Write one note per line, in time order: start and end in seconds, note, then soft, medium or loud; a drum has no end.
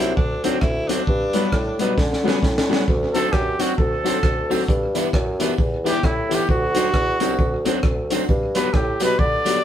0.00 0.15 C2 medium
0.00 0.11 F#3 medium
0.00 0.11 C4 medium
0.00 0.12 C4 medium
0.00 0.11 D4 medium
0.00 0.12 D4 medium
0.00 0.15 E4 medium
0.00 0.12 F#4 loud
0.16 0.56 D2 medium
0.16 0.45 D4 medium
0.16 kick loud
0.43 0.56 F#3 medium
0.43 0.56 C4 medium
0.43 0.63 C4 medium
0.43 0.57 C4 medium
0.43 0.56 D4 medium
0.43 0.57 D4 medium
0.43 0.57 F#4 loud
0.43 closed hi-hat medium
0.61 1.01 D2 medium
0.61 0.89 E4 medium
0.61 kick loud
0.61 cross-stick medium
0.88 1.02 F#3 medium
0.88 1.01 C4 medium
0.88 1.02 C4 medium
0.88 2.42 D4 medium
0.88 1.01 D4 medium
0.88 1.03 D4 medium
0.88 1.02 F#4 medium
0.88 closed hi-hat medium
1.07 1.46 G2 loud
1.07 kick loud
1.33 1.47 F#3 medium
1.33 1.46 G3 loud
1.33 1.47 B3 medium
1.33 1.48 D4 medium
1.33 1.47 F#4 medium
1.33 closed hi-hat medium
1.52 1.76 A2 medium
1.52 kick medium
1.52 cross-stick loud
1.79 1.96 B2 medium
1.79 1.92 F#3 medium
1.79 1.91 G3 medium
1.79 1.92 B3 medium
1.79 1.93 B3 medium
1.79 1.93 D4 medium
1.79 1.92 F#4 loud
1.79 closed hi-hat medium
1.98 2.36 D3 medium
1.98 kick loud
1.98 snare medium
2.13 snare medium
2.23 2.37 F#3 medium
2.23 2.36 G3 medium
2.23 2.37 B3 medium
2.23 2.38 B3 medium
2.23 2.38 D4 loud
2.23 2.37 F#4 loud
2.28 snare medium
2.43 2.81 A2 medium
2.43 kick loud
2.43 snare medium
2.58 snare medium
2.68 2.82 F#3 medium
2.68 2.81 G3 medium
2.68 2.82 B3 medium
2.68 2.83 B3 medium
2.68 2.83 D4 medium
2.68 2.82 F#4 medium
2.73 snare medium
2.88 3.26 D2 loud
2.88 kick loud
3.14 3.27 F#3 medium
3.14 3.27 C4 loud
3.14 3.28 C4 loud
3.14 3.27 D4 medium
3.14 3.28 D4 loud
3.14 3.27 F#4 loud
3.14 3.34 A4 loud
3.14 closed hi-hat medium
3.14 tambourine medium
3.33 3.56 F#2 medium
3.33 3.63 G4 loud
3.33 kick loud
3.33 cross-stick loud
3.58 3.72 F#3 medium
3.58 3.72 C4 medium
3.58 3.73 C4 medium
3.58 3.72 D4 medium
3.58 3.73 D4 loud
3.58 3.72 F#4 loud
3.58 3.76 F#4 medium
3.58 closed hi-hat medium
3.58 tambourine medium
3.77 4.17 D2 medium
3.77 4.91 A4 medium
3.77 kick loud
4.04 4.17 F#3 medium
4.04 4.17 C4 medium
4.04 4.18 C4 medium
4.04 4.17 D4 medium
4.04 4.18 D4 medium
4.04 4.17 F#4 loud
4.04 closed hi-hat loud
4.04 tambourine medium
4.23 4.62 D2 medium
4.23 kick loud
4.23 cross-stick loud
4.49 4.63 F#3 medium
4.49 4.62 C4 medium
4.49 4.63 C4 medium
4.49 4.62 D4 medium
4.49 4.63 D4 medium
4.49 4.63 F#4 loud
4.49 open hi-hat medium
4.49 tambourine medium
4.68 5.07 G2 loud
4.68 kick loud
4.68 hi-hat pedal medium
4.94 5.08 E3 medium
4.94 5.07 B3 medium
4.94 5.08 B3 medium
4.94 5.08 D4 medium
4.94 5.07 E4 medium
4.94 5.08 G4 loud
4.94 closed hi-hat medium
4.94 tambourine medium
5.13 5.52 F#2 medium
5.13 kick loud
5.13 cross-stick loud
5.39 5.53 E3 medium
5.39 5.52 B3 medium
5.39 5.53 B3 medium
5.39 5.54 D4 loud
5.39 5.52 E4 medium
5.39 5.53 G4 loud
5.39 closed hi-hat medium
5.39 tambourine medium
5.58 5.97 E2 medium
5.58 kick loud
5.85 5.98 E3 medium
5.85 5.97 B3 loud
5.85 5.98 B3 medium
5.85 5.98 D4 loud
5.85 5.98 E4 medium
5.85 5.98 G4 loud
5.85 6.07 G4 loud
5.85 closed hi-hat medium
5.85 tambourine medium
6.03 6.42 A2 medium
6.03 6.36 E4 medium
6.03 kick loud
6.03 cross-stick loud
6.29 6.43 E3 medium
6.29 6.42 B3 medium
6.29 6.43 B3 medium
6.29 6.44 D4 medium
6.29 6.42 E4 medium
6.29 6.43 G4 loud
6.29 closed hi-hat medium
6.29 tambourine medium
6.35 6.49 G4 loud
6.49 6.96 D2 loud
6.49 7.63 F#4 loud
6.49 kick loud
6.74 6.88 F#3 medium
6.74 6.87 C4 medium
6.74 6.88 C4 loud
6.74 6.88 D4 medium
6.74 6.89 D4 loud
6.74 6.88 F#4 loud
6.74 closed hi-hat medium
6.74 tambourine medium
6.94 7.17 E2 medium
6.94 kick loud
6.94 cross-stick loud
7.20 7.37 C2 loud
7.20 7.33 F#3 medium
7.20 7.33 C4 medium
7.20 7.33 D4 medium
7.20 7.33 F#4 loud
7.20 closed hi-hat medium
7.20 tambourine medium
7.39 7.77 D2 medium
7.39 kick loud
7.65 7.78 F#3 medium
7.65 7.78 C4 loud
7.65 7.78 C4 medium
7.65 7.78 D4 medium
7.65 7.79 D4 medium
7.65 7.78 F#4 loud
7.65 closed hi-hat loud
7.65 tambourine medium
7.83 8.22 D2 medium
7.83 kick loud
7.83 cross-stick medium
8.10 8.23 F#3 medium
8.10 8.23 C4 medium
8.10 8.24 C4 medium
8.10 8.23 D4 medium
8.10 8.24 D4 medium
8.10 8.23 F#4 loud
8.10 closed hi-hat medium
8.10 tambourine medium
8.29 8.67 G2 loud
8.29 kick loud
8.55 8.68 F#3 medium
8.55 8.68 B3 loud
8.55 8.69 D4 loud
8.55 8.68 F#4 medium
8.55 8.68 G4 loud
8.55 8.75 B4 loud
8.55 closed hi-hat medium
8.55 tambourine medium
8.74 8.97 A2 medium
8.74 9.04 G4 medium
8.74 kick loud
8.74 cross-stick loud
9.00 9.17 B2 loud
9.00 9.13 F#3 medium
9.00 9.13 B3 medium
9.00 9.14 B3 medium
9.00 9.14 D4 medium
9.00 9.13 F#4 medium
9.00 9.13 G4 loud
9.00 closed hi-hat medium
9.00 tambourine medium
9.04 9.21 B4 loud
9.19 9.58 D3 medium
9.19 9.64 D5 loud
9.19 kick loud
9.45 9.58 F#3 medium
9.45 9.58 B3 loud
9.45 9.59 B3 medium
9.45 9.59 D4 loud
9.45 9.58 F#4 medium
9.45 9.59 G4 loud
9.45 closed hi-hat loud
9.45 tambourine medium